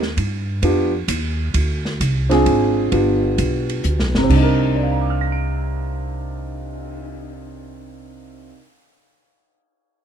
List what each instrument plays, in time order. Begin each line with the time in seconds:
Already playing: upright bass D#2
0.03 snare
0.17 upright bass G2, kick, ride
0.62 upright bass F2, grand piano B3 D4 F4 G4, kick, ride
1.08 upright bass D#2, kick, hi-hat pedal, ride
1.54 upright bass D2, kick, ride
1.85 snare
2.00 upright bass C2, kick, hi-hat pedal, ride
2.29 grand piano C4 D4 F4 G#4, snare, ride
2.46 upright bass G#1, kick, ride
2.92 upright bass G1, grand piano B3 D4 F4 G4, kick, ride
3.38 upright bass B1, kick, hi-hat pedal, ride
3.69 ride
3.84 upright bass D2, hi-hat pedal
3.99 upright bass B1, snare
4.14 upright bass G1, grand piano C3, snare
4.23 grand piano C4
4.29 upright bass C2, grand piano D4, kick, crash
4.36 grand piano D#4
4.43 grand piano A#4
4.61 cymbal swell
4.76 grand piano D5
4.83 grand piano F5
4.91 grand piano A#5
5.01 grand piano D6
5.10 grand piano F6
5.21 grand piano A#6
5.32 grand piano D7